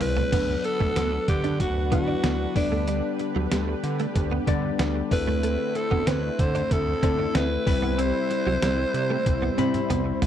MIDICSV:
0, 0, Header, 1, 8, 480
1, 0, Start_track
1, 0, Tempo, 638298
1, 244, Time_signature, 4, 2, 24, 8
1, 7720, End_track
2, 0, Start_track
2, 0, Title_t, "Alto saxophone"
2, 0, Program_c, 0, 65
2, 13, Note_on_c, 0, 71, 106
2, 491, Note_on_c, 0, 69, 101
2, 502, Note_off_c, 0, 71, 0
2, 966, Note_off_c, 0, 69, 0
2, 971, Note_on_c, 0, 67, 91
2, 1191, Note_off_c, 0, 67, 0
2, 1207, Note_on_c, 0, 66, 86
2, 1429, Note_off_c, 0, 66, 0
2, 1448, Note_on_c, 0, 66, 88
2, 1896, Note_off_c, 0, 66, 0
2, 1930, Note_on_c, 0, 62, 77
2, 2377, Note_off_c, 0, 62, 0
2, 3854, Note_on_c, 0, 71, 103
2, 4332, Note_on_c, 0, 69, 93
2, 4343, Note_off_c, 0, 71, 0
2, 4567, Note_on_c, 0, 71, 94
2, 4578, Note_off_c, 0, 69, 0
2, 4811, Note_on_c, 0, 72, 100
2, 4823, Note_off_c, 0, 71, 0
2, 5053, Note_on_c, 0, 69, 95
2, 5064, Note_off_c, 0, 72, 0
2, 5532, Note_on_c, 0, 71, 97
2, 5543, Note_off_c, 0, 69, 0
2, 6010, Note_on_c, 0, 72, 102
2, 6021, Note_off_c, 0, 71, 0
2, 7687, Note_off_c, 0, 72, 0
2, 7720, End_track
3, 0, Start_track
3, 0, Title_t, "Tine electric piano"
3, 0, Program_c, 1, 4
3, 0, Control_c, 1, 64, 127
3, 0, Note_on_c, 1, 55, 67
3, 0, Note_on_c, 1, 60, 67
3, 0, Note_on_c, 1, 64, 64
3, 0, Note_on_c, 1, 71, 77
3, 0, Note_on_c, 1, 72, 76
3, 94, Note_off_c, 1, 55, 0
3, 95, Note_off_c, 1, 60, 0
3, 96, Note_off_c, 1, 64, 0
3, 98, Note_off_c, 1, 72, 0
3, 242, Note_on_c, 1, 54, 64
3, 244, Note_on_c, 1, 59, 61
3, 248, Note_on_c, 1, 62, 61
3, 251, Note_off_c, 1, 71, 0
3, 251, Note_on_c, 1, 71, 69
3, 256, Control_c, 1, 64, 0
3, 389, Control_c, 1, 64, 127
3, 905, Note_off_c, 1, 54, 0
3, 905, Note_off_c, 1, 59, 0
3, 907, Note_off_c, 1, 62, 0
3, 909, Note_off_c, 1, 71, 0
3, 1438, Note_on_c, 1, 54, 65
3, 1441, Note_on_c, 1, 59, 63
3, 1444, Note_on_c, 1, 62, 61
3, 1447, Note_on_c, 1, 64, 75
3, 1913, Note_off_c, 1, 59, 0
3, 1916, Note_off_c, 1, 62, 0
3, 1919, Note_on_c, 1, 55, 71
3, 1921, Note_off_c, 1, 54, 0
3, 1922, Note_on_c, 1, 59, 63
3, 1925, Note_on_c, 1, 62, 66
3, 1926, Note_off_c, 1, 64, 0
3, 1928, Note_on_c, 1, 71, 77
3, 1933, Control_c, 1, 64, 0
3, 2052, Control_c, 1, 64, 127
3, 2690, Note_off_c, 1, 55, 0
3, 2691, Note_off_c, 1, 59, 0
3, 2693, Note_off_c, 1, 62, 0
3, 2694, Note_off_c, 1, 71, 0
3, 3362, Note_on_c, 1, 55, 81
3, 3365, Note_on_c, 1, 59, 74
3, 3369, Note_on_c, 1, 62, 77
3, 3371, Note_on_c, 1, 74, 94
3, 3842, Note_on_c, 1, 57, 75
3, 3843, Note_off_c, 1, 55, 0
3, 3845, Note_off_c, 1, 59, 0
3, 3845, Note_on_c, 1, 60, 67
3, 3847, Note_off_c, 1, 62, 0
3, 3847, Note_on_c, 1, 64, 64
3, 3848, Note_off_c, 1, 74, 0
3, 3851, Note_on_c, 1, 69, 78
3, 3854, Control_c, 1, 64, 0
3, 3998, Control_c, 1, 64, 127
3, 4611, Note_off_c, 1, 57, 0
3, 4613, Note_off_c, 1, 60, 0
3, 4614, Note_off_c, 1, 64, 0
3, 4616, Note_off_c, 1, 69, 0
3, 5283, Note_on_c, 1, 57, 70
3, 5285, Note_on_c, 1, 60, 65
3, 5289, Note_on_c, 1, 64, 62
3, 5291, Note_on_c, 1, 69, 80
3, 5755, Note_off_c, 1, 60, 0
3, 5758, Note_off_c, 1, 64, 0
3, 5762, Note_on_c, 1, 55, 75
3, 5764, Note_off_c, 1, 57, 0
3, 5764, Note_on_c, 1, 60, 67
3, 5767, Note_on_c, 1, 64, 72
3, 5768, Note_off_c, 1, 69, 0
3, 5770, Note_on_c, 1, 83, 76
3, 5776, Control_c, 1, 64, 0
3, 5882, Control_c, 1, 64, 127
3, 6531, Note_off_c, 1, 55, 0
3, 6532, Note_off_c, 1, 60, 0
3, 6534, Note_off_c, 1, 64, 0
3, 6535, Note_off_c, 1, 83, 0
3, 7200, Note_on_c, 1, 55, 89
3, 7203, Note_on_c, 1, 60, 73
3, 7206, Note_on_c, 1, 64, 75
3, 7210, Note_on_c, 1, 83, 93
3, 7698, Note_off_c, 1, 55, 0
3, 7700, Note_off_c, 1, 60, 0
3, 7701, Note_off_c, 1, 64, 0
3, 7703, Note_off_c, 1, 83, 0
3, 7720, End_track
4, 0, Start_track
4, 0, Title_t, "Analog synth pad"
4, 0, Program_c, 2, 89
4, 249, Note_on_c, 2, 78, 68
4, 250, Note_on_c, 2, 50, 73
4, 252, Note_on_c, 2, 62, 68
4, 252, Note_on_c, 2, 71, 81
4, 1910, Note_off_c, 2, 78, 0
4, 1925, Note_on_c, 2, 67, 67
4, 3818, Note_off_c, 2, 62, 0
4, 3818, Note_off_c, 2, 71, 0
4, 3826, Note_off_c, 2, 67, 0
4, 3847, Note_on_c, 2, 60, 67
4, 3848, Note_on_c, 2, 57, 69
4, 3849, Note_on_c, 2, 64, 85
4, 5737, Note_off_c, 2, 50, 0
4, 5747, Note_off_c, 2, 57, 0
4, 5747, Note_off_c, 2, 60, 0
4, 5769, Note_on_c, 2, 48, 76
4, 5769, Note_on_c, 2, 60, 65
4, 5770, Note_on_c, 2, 55, 69
4, 7720, Note_off_c, 2, 48, 0
4, 7720, Note_off_c, 2, 55, 0
4, 7720, Note_off_c, 2, 60, 0
4, 7720, Note_off_c, 2, 64, 0
4, 7720, End_track
5, 0, Start_track
5, 0, Title_t, "Clean electric guitar"
5, 0, Program_c, 3, 27
5, 124, Note_on_c, 3, 57, 65
5, 211, Note_off_c, 3, 57, 0
5, 243, Note_on_c, 3, 59, 73
5, 331, Note_off_c, 3, 59, 0
5, 604, Note_on_c, 3, 57, 71
5, 691, Note_off_c, 3, 57, 0
5, 723, Note_on_c, 3, 59, 75
5, 811, Note_off_c, 3, 59, 0
5, 1083, Note_on_c, 3, 62, 68
5, 1171, Note_off_c, 3, 62, 0
5, 1442, Note_on_c, 3, 59, 75
5, 1530, Note_off_c, 3, 59, 0
5, 1561, Note_on_c, 3, 62, 75
5, 1649, Note_off_c, 3, 62, 0
5, 1681, Note_on_c, 3, 59, 82
5, 1769, Note_off_c, 3, 59, 0
5, 2045, Note_on_c, 3, 57, 68
5, 2132, Note_off_c, 3, 57, 0
5, 2164, Note_on_c, 3, 55, 81
5, 2251, Note_off_c, 3, 55, 0
5, 2526, Note_on_c, 3, 54, 80
5, 2612, Note_off_c, 3, 54, 0
5, 2646, Note_on_c, 3, 55, 82
5, 2732, Note_off_c, 3, 55, 0
5, 3007, Note_on_c, 3, 57, 68
5, 3093, Note_off_c, 3, 57, 0
5, 3245, Note_on_c, 3, 59, 72
5, 3331, Note_off_c, 3, 59, 0
5, 3367, Note_on_c, 3, 62, 70
5, 3453, Note_off_c, 3, 62, 0
5, 3607, Note_on_c, 3, 59, 71
5, 3693, Note_off_c, 3, 59, 0
5, 3967, Note_on_c, 3, 57, 78
5, 4053, Note_off_c, 3, 57, 0
5, 4087, Note_on_c, 3, 57, 76
5, 4173, Note_off_c, 3, 57, 0
5, 4444, Note_on_c, 3, 59, 80
5, 4531, Note_off_c, 3, 59, 0
5, 4566, Note_on_c, 3, 60, 74
5, 4652, Note_off_c, 3, 60, 0
5, 4925, Note_on_c, 3, 62, 75
5, 5012, Note_off_c, 3, 62, 0
5, 5287, Note_on_c, 3, 60, 77
5, 5373, Note_off_c, 3, 60, 0
5, 5406, Note_on_c, 3, 62, 77
5, 5493, Note_off_c, 3, 62, 0
5, 5525, Note_on_c, 3, 60, 83
5, 5612, Note_off_c, 3, 60, 0
5, 5884, Note_on_c, 3, 59, 67
5, 5971, Note_off_c, 3, 59, 0
5, 6004, Note_on_c, 3, 60, 85
5, 6091, Note_off_c, 3, 60, 0
5, 6366, Note_on_c, 3, 54, 84
5, 6452, Note_off_c, 3, 54, 0
5, 6485, Note_on_c, 3, 55, 84
5, 6572, Note_off_c, 3, 55, 0
5, 6845, Note_on_c, 3, 57, 74
5, 6932, Note_off_c, 3, 57, 0
5, 7086, Note_on_c, 3, 59, 76
5, 7172, Note_off_c, 3, 59, 0
5, 7204, Note_on_c, 3, 60, 74
5, 7291, Note_off_c, 3, 60, 0
5, 7444, Note_on_c, 3, 59, 77
5, 7531, Note_off_c, 3, 59, 0
5, 7720, End_track
6, 0, Start_track
6, 0, Title_t, "Analog synth bass"
6, 0, Program_c, 4, 38
6, 5, Note_on_c, 4, 36, 96
6, 178, Note_off_c, 4, 36, 0
6, 245, Note_on_c, 4, 38, 104
6, 418, Note_off_c, 4, 38, 0
6, 605, Note_on_c, 4, 38, 93
6, 692, Note_off_c, 4, 38, 0
6, 722, Note_on_c, 4, 38, 103
6, 896, Note_off_c, 4, 38, 0
6, 964, Note_on_c, 4, 50, 95
6, 1204, Note_on_c, 4, 38, 102
6, 1215, Note_off_c, 4, 50, 0
6, 1443, Note_on_c, 4, 50, 92
6, 1454, Note_off_c, 4, 38, 0
6, 1616, Note_off_c, 4, 50, 0
6, 1683, Note_on_c, 4, 38, 98
6, 1857, Note_off_c, 4, 38, 0
6, 1924, Note_on_c, 4, 38, 88
6, 2270, Note_off_c, 4, 38, 0
6, 2525, Note_on_c, 4, 38, 96
6, 2611, Note_off_c, 4, 38, 0
6, 2647, Note_on_c, 4, 38, 93
6, 2819, Note_off_c, 4, 38, 0
6, 2884, Note_on_c, 4, 50, 99
6, 3057, Note_off_c, 4, 50, 0
6, 3125, Note_on_c, 4, 38, 101
6, 3298, Note_off_c, 4, 38, 0
6, 3365, Note_on_c, 4, 50, 102
6, 3538, Note_off_c, 4, 50, 0
6, 3603, Note_on_c, 4, 38, 101
6, 3777, Note_off_c, 4, 38, 0
6, 3845, Note_on_c, 4, 38, 93
6, 4190, Note_off_c, 4, 38, 0
6, 4448, Note_on_c, 4, 38, 90
6, 4533, Note_off_c, 4, 38, 0
6, 4566, Note_on_c, 4, 38, 102
6, 4738, Note_off_c, 4, 38, 0
6, 4806, Note_on_c, 4, 50, 95
6, 4979, Note_off_c, 4, 50, 0
6, 5046, Note_on_c, 4, 38, 103
6, 5218, Note_off_c, 4, 38, 0
6, 5285, Note_on_c, 4, 50, 92
6, 5458, Note_off_c, 4, 50, 0
6, 5527, Note_on_c, 4, 38, 84
6, 5699, Note_off_c, 4, 38, 0
6, 5766, Note_on_c, 4, 36, 100
6, 6111, Note_off_c, 4, 36, 0
6, 6365, Note_on_c, 4, 36, 92
6, 6451, Note_off_c, 4, 36, 0
6, 6483, Note_on_c, 4, 36, 98
6, 6656, Note_off_c, 4, 36, 0
6, 6724, Note_on_c, 4, 48, 99
6, 6897, Note_off_c, 4, 48, 0
6, 6966, Note_on_c, 4, 36, 103
6, 7138, Note_off_c, 4, 36, 0
6, 7204, Note_on_c, 4, 48, 98
6, 7377, Note_off_c, 4, 48, 0
6, 7444, Note_on_c, 4, 36, 88
6, 7617, Note_off_c, 4, 36, 0
6, 7684, Note_on_c, 4, 36, 93
6, 7720, Note_off_c, 4, 36, 0
6, 7720, End_track
7, 0, Start_track
7, 0, Title_t, "Muted clean electric guitar strokes"
7, 4, Note_on_c, 9, 29, 41
7, 79, Note_off_c, 9, 29, 0
7, 486, Note_on_c, 9, 29, 42
7, 561, Note_off_c, 9, 29, 0
7, 844, Note_on_c, 9, 29, 40
7, 920, Note_off_c, 9, 29, 0
7, 1202, Note_on_c, 9, 29, 43
7, 1277, Note_off_c, 9, 29, 0
7, 1924, Note_on_c, 9, 29, 42
7, 1999, Note_off_c, 9, 29, 0
7, 2406, Note_on_c, 9, 29, 43
7, 2481, Note_off_c, 9, 29, 0
7, 2768, Note_on_c, 9, 29, 40
7, 2843, Note_off_c, 9, 29, 0
7, 3126, Note_on_c, 9, 29, 45
7, 3202, Note_off_c, 9, 29, 0
7, 3727, Note_on_c, 9, 29, 42
7, 3802, Note_off_c, 9, 29, 0
7, 4327, Note_on_c, 9, 29, 44
7, 4402, Note_off_c, 9, 29, 0
7, 4686, Note_on_c, 9, 29, 43
7, 4761, Note_off_c, 9, 29, 0
7, 5046, Note_on_c, 9, 29, 46
7, 5122, Note_off_c, 9, 29, 0
7, 5765, Note_on_c, 9, 29, 45
7, 5840, Note_off_c, 9, 29, 0
7, 6247, Note_on_c, 9, 29, 46
7, 6322, Note_off_c, 9, 29, 0
7, 6606, Note_on_c, 9, 29, 45
7, 6681, Note_off_c, 9, 29, 0
7, 6966, Note_on_c, 9, 29, 46
7, 7042, Note_off_c, 9, 29, 0
7, 7564, Note_on_c, 9, 29, 43
7, 7639, Note_off_c, 9, 29, 0
7, 7720, End_track
8, 0, Start_track
8, 0, Title_t, "Drums"
8, 4, Note_on_c, 9, 43, 94
8, 5, Note_on_c, 9, 46, 72
8, 80, Note_off_c, 9, 43, 0
8, 80, Note_off_c, 9, 46, 0
8, 125, Note_on_c, 9, 43, 75
8, 200, Note_off_c, 9, 43, 0
8, 245, Note_on_c, 9, 36, 110
8, 245, Note_on_c, 9, 42, 93
8, 245, Note_on_c, 9, 49, 86
8, 320, Note_off_c, 9, 36, 0
8, 320, Note_off_c, 9, 42, 0
8, 320, Note_off_c, 9, 49, 0
8, 484, Note_on_c, 9, 42, 60
8, 559, Note_off_c, 9, 42, 0
8, 605, Note_on_c, 9, 36, 86
8, 680, Note_off_c, 9, 36, 0
8, 723, Note_on_c, 9, 42, 88
8, 724, Note_on_c, 9, 38, 106
8, 798, Note_off_c, 9, 42, 0
8, 799, Note_off_c, 9, 38, 0
8, 963, Note_on_c, 9, 42, 73
8, 964, Note_on_c, 9, 36, 93
8, 1039, Note_off_c, 9, 36, 0
8, 1039, Note_off_c, 9, 42, 0
8, 1084, Note_on_c, 9, 42, 57
8, 1159, Note_off_c, 9, 42, 0
8, 1203, Note_on_c, 9, 42, 77
8, 1204, Note_on_c, 9, 36, 88
8, 1278, Note_off_c, 9, 42, 0
8, 1279, Note_off_c, 9, 36, 0
8, 1443, Note_on_c, 9, 36, 85
8, 1443, Note_on_c, 9, 42, 69
8, 1518, Note_off_c, 9, 36, 0
8, 1518, Note_off_c, 9, 42, 0
8, 1683, Note_on_c, 9, 38, 104
8, 1683, Note_on_c, 9, 42, 79
8, 1758, Note_off_c, 9, 38, 0
8, 1758, Note_off_c, 9, 42, 0
8, 1923, Note_on_c, 9, 36, 104
8, 1924, Note_on_c, 9, 46, 72
8, 1998, Note_off_c, 9, 36, 0
8, 1999, Note_off_c, 9, 46, 0
8, 2163, Note_on_c, 9, 42, 95
8, 2238, Note_off_c, 9, 42, 0
8, 2402, Note_on_c, 9, 42, 56
8, 2477, Note_off_c, 9, 42, 0
8, 2643, Note_on_c, 9, 42, 93
8, 2644, Note_on_c, 9, 38, 108
8, 2718, Note_off_c, 9, 42, 0
8, 2719, Note_off_c, 9, 38, 0
8, 2885, Note_on_c, 9, 42, 75
8, 2960, Note_off_c, 9, 42, 0
8, 3004, Note_on_c, 9, 42, 58
8, 3079, Note_off_c, 9, 42, 0
8, 3125, Note_on_c, 9, 36, 93
8, 3125, Note_on_c, 9, 42, 76
8, 3200, Note_off_c, 9, 36, 0
8, 3200, Note_off_c, 9, 42, 0
8, 3364, Note_on_c, 9, 36, 90
8, 3364, Note_on_c, 9, 42, 70
8, 3439, Note_off_c, 9, 36, 0
8, 3440, Note_off_c, 9, 42, 0
8, 3604, Note_on_c, 9, 38, 105
8, 3605, Note_on_c, 9, 42, 79
8, 3679, Note_off_c, 9, 38, 0
8, 3680, Note_off_c, 9, 42, 0
8, 3845, Note_on_c, 9, 36, 100
8, 3846, Note_on_c, 9, 46, 76
8, 3920, Note_off_c, 9, 36, 0
8, 3921, Note_off_c, 9, 46, 0
8, 4086, Note_on_c, 9, 42, 101
8, 4161, Note_off_c, 9, 42, 0
8, 4326, Note_on_c, 9, 42, 59
8, 4401, Note_off_c, 9, 42, 0
8, 4446, Note_on_c, 9, 36, 88
8, 4522, Note_off_c, 9, 36, 0
8, 4565, Note_on_c, 9, 38, 103
8, 4565, Note_on_c, 9, 42, 91
8, 4640, Note_off_c, 9, 42, 0
8, 4641, Note_off_c, 9, 38, 0
8, 4806, Note_on_c, 9, 36, 95
8, 4806, Note_on_c, 9, 42, 81
8, 4881, Note_off_c, 9, 36, 0
8, 4882, Note_off_c, 9, 42, 0
8, 4928, Note_on_c, 9, 42, 58
8, 5003, Note_off_c, 9, 42, 0
8, 5046, Note_on_c, 9, 42, 80
8, 5047, Note_on_c, 9, 36, 91
8, 5121, Note_off_c, 9, 42, 0
8, 5122, Note_off_c, 9, 36, 0
8, 5285, Note_on_c, 9, 36, 90
8, 5286, Note_on_c, 9, 42, 73
8, 5360, Note_off_c, 9, 36, 0
8, 5362, Note_off_c, 9, 42, 0
8, 5527, Note_on_c, 9, 38, 108
8, 5528, Note_on_c, 9, 42, 84
8, 5602, Note_off_c, 9, 38, 0
8, 5603, Note_off_c, 9, 42, 0
8, 5766, Note_on_c, 9, 36, 106
8, 5768, Note_on_c, 9, 46, 76
8, 5841, Note_off_c, 9, 36, 0
8, 5843, Note_off_c, 9, 46, 0
8, 6007, Note_on_c, 9, 42, 101
8, 6082, Note_off_c, 9, 42, 0
8, 6245, Note_on_c, 9, 42, 60
8, 6321, Note_off_c, 9, 42, 0
8, 6485, Note_on_c, 9, 42, 90
8, 6486, Note_on_c, 9, 38, 109
8, 6560, Note_off_c, 9, 42, 0
8, 6561, Note_off_c, 9, 38, 0
8, 6726, Note_on_c, 9, 42, 77
8, 6801, Note_off_c, 9, 42, 0
8, 6965, Note_on_c, 9, 36, 93
8, 6965, Note_on_c, 9, 42, 77
8, 6966, Note_on_c, 9, 48, 55
8, 7041, Note_off_c, 9, 36, 0
8, 7041, Note_off_c, 9, 42, 0
8, 7041, Note_off_c, 9, 48, 0
8, 7206, Note_on_c, 9, 42, 71
8, 7206, Note_on_c, 9, 47, 72
8, 7281, Note_off_c, 9, 42, 0
8, 7281, Note_off_c, 9, 47, 0
8, 7325, Note_on_c, 9, 42, 58
8, 7327, Note_on_c, 9, 47, 62
8, 7400, Note_off_c, 9, 42, 0
8, 7402, Note_off_c, 9, 47, 0
8, 7446, Note_on_c, 9, 45, 79
8, 7447, Note_on_c, 9, 42, 86
8, 7522, Note_off_c, 9, 42, 0
8, 7522, Note_off_c, 9, 45, 0
8, 7686, Note_on_c, 9, 43, 101
8, 7687, Note_on_c, 9, 46, 76
8, 7720, Note_off_c, 9, 43, 0
8, 7720, Note_off_c, 9, 46, 0
8, 7720, End_track
0, 0, End_of_file